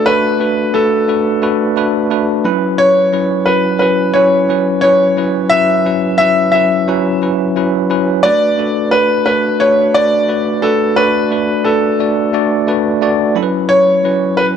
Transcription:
Already playing: tine electric piano A3 D4 F#4 A4 B4
0.06 tine electric piano A3 D4 F#4 B4, grand piano B4
0.40 tine electric piano A3 D4 F#4 B4
0.73 tine electric piano A3 D4 F#4 B4, grand piano A4
1.08 tine electric piano A3 D4 F#4 B4
1.42 tine electric piano A3 D4 F#4 B4
1.76 tine electric piano A3 D4 F#4 B4
2.10 tine electric piano A3 D4 F#4 B4
2.44 tine electric piano F#3 C#4 E4 B4
2.78 grand piano C#5
3.12 tine electric piano F#3 C#4 E4 B4
3.46 tine electric piano F#3 C#4 E4 B4, grand piano B4
3.79 tine electric piano F#3 C#4 E4 B4, grand piano B4
4.14 tine electric piano F#3 C#4 E4 B4, grand piano C#5
4.49 tine electric piano F#3 C#4 E4 B4
4.81 tine electric piano F#3 C#4 E4 B4, grand piano C#5
5.17 tine electric piano F#3 C#4 E4 B4
5.50 tine electric piano F#3 C#4 E4 B4, grand piano E5
5.85 tine electric piano F#3 C#4 E4 B4
6.18 tine electric piano F#3 C#4 E4 B4, grand piano E5
6.52 tine electric piano F#3 C#4 E4 B4, grand piano E5
6.88 tine electric piano F#3 C#4 E4 B4
7.22 tine electric piano F#3 C#4 E4 B4
7.56 tine electric piano F#3 C#4 E4 B4
7.90 tine electric piano F#3 C#4 E4 B4
8.23 tine electric piano A3 D4 F#4 B4, grand piano D5
8.58 tine electric piano A3 D4 F#4 A4
8.91 tine electric piano A3 D4 F#4 B4, grand piano B4
9.26 tine electric piano A3 D4 F#4 B4, grand piano B4
9.60 tine electric piano A3 D4 F#4 B4, grand piano C#5
9.94 tine electric piano A3 D4 F#4 B4, grand piano D5
10.28 tine electric piano A3 D4 F#4 B4
10.62 tine electric piano A3 D4 F#4 B4, grand piano A4
10.96 tine electric piano A3 D4 F#4 D5, grand piano B4
11.31 tine electric piano A3 D4 F#4 B4
11.64 tine electric piano A3 D4 F#4 B4, grand piano A4
11.99 tine electric piano A3 D4 F#4 D5
12.33 tine electric piano A3 D4 F#4 D5
12.67 tine electric piano A3 D4 F#4 B4 D5
13.01 tine electric piano A3 D4 F#4 D5 F#5
13.35 tine electric piano F#3 C#4 E4 A4 B5
13.43 tine electric piano B4
13.69 grand piano C#5
14.04 tine electric piano F#3 C#4 E4 B4
14.37 tine electric piano F#3 C#4 E4 B4, grand piano B4

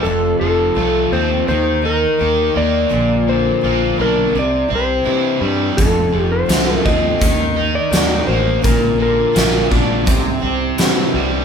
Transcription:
0.03 picked electric bass F1, overdriven electric guitar F2, twelve-string acoustic guitar F3 C4 F4 A4, electric slide guitar A4
0.40 picked electric bass F1, overdriven electric guitar F3 A3, electric slide guitar A4
0.75 picked electric bass C2, twelve-string acoustic guitar F3 C4 F4, overdriven electric guitar A3
0.79 twelve-string acoustic guitar A4
1.12 picked electric bass D#2, twelve-string acoustic guitar C4 F4 A4, electric slide guitar C5
1.48 picked electric bass D#2, twelve-string acoustic guitar D#3 G3 A#3 D#4 A#4, electric slide guitar C5
1.82 twelve-string acoustic guitar A#3 D#4 A#4
1.86 electric slide guitar A#4
2.17 picked electric bass D#2, overdriven electric guitar D#3 G4, twelve-string acoustic guitar G3 A#3 D#4 A#4
2.55 picked electric bass D#2, overdriven electric guitar A#3, electric slide guitar D5
2.89 picked electric bass A#1, twelve-string acoustic guitar A#2 D3 F3 A#3 D4 A#4
3.27 overdriven electric guitar D3 A#3, electric slide guitar C5
3.61 picked electric bass A#1, twelve-string acoustic guitar F3 A#3 D4 A#4, overdriven electric guitar F4
3.97 picked electric bass B1, twelve-string acoustic guitar A#3 D4 A#4
4.01 twelve-string acoustic guitar F3, electric slide guitar A#4
4.35 picked electric bass C2, twelve-string acoustic guitar C3 G3 C4 E4 G4, electric slide guitar D5
4.68 picked electric bass C2, twelve-string acoustic guitar E4 G4
4.72 twelve-string acoustic guitar C4, electric slide guitar C5
5.04 picked electric bass C3, overdriven electric guitar E3, twelve-string acoustic guitar G3 C4 E4 G4
5.41 picked electric bass G2, overdriven electric guitar G3
5.77 picked electric bass F1, overdriven electric guitar F2, twelve-string acoustic guitar F3 C4 F4 A4, electric slide guitar A4, kick, closed hi-hat
6.12 picked electric bass F1, overdriven electric guitar F3 A3
6.21 electric slide guitar G4
6.32 electric slide guitar C5
6.46 picked electric bass C2, twelve-string acoustic guitar F3 C4 F4 A4, overdriven electric guitar A3, closed hi-hat
6.50 snare
6.76 electric slide guitar A#4
6.85 picked electric bass D#2, twelve-string acoustic guitar C4 F4 A4, electric slide guitar D#5, kick
7.19 picked electric bass D#2, twelve-string acoustic guitar D#3 G3 A#3 D#4 A#4, kick, closed hi-hat
7.55 twelve-string acoustic guitar A#3 D#4 A#4
7.75 electric slide guitar D5
7.91 picked electric bass D#2, overdriven electric guitar D#3 G4, twelve-string acoustic guitar G3 A#3 D#4 A#4, snare, closed hi-hat
8.27 picked electric bass A1, overdriven electric guitar A#3, electric slide guitar C5
8.62 picked electric bass A#1, twelve-string acoustic guitar A#2 D3 F3 A#3 D4 A#4, electric slide guitar A#4, kick, closed hi-hat
8.98 overdriven electric guitar D3 A#3
9.02 electric slide guitar A#4
9.32 twelve-string acoustic guitar F3 A#3 D4 A#4, overdriven electric guitar F4, closed hi-hat
9.36 picked electric bass A#1, snare
9.70 picked electric bass A#1, twelve-string acoustic guitar F3 A#3 D4 A#4, kick
10.05 picked electric bass C2, twelve-string acoustic guitar C3 G3 C4 E4 C5, kick, closed hi-hat
10.40 picked electric bass C2, twelve-string acoustic guitar C4 E4 C5
10.78 picked electric bass C3, overdriven electric guitar E3, twelve-string acoustic guitar G3 C4 E4 C5, snare, closed hi-hat
11.13 picked electric bass C2, overdriven electric guitar G3

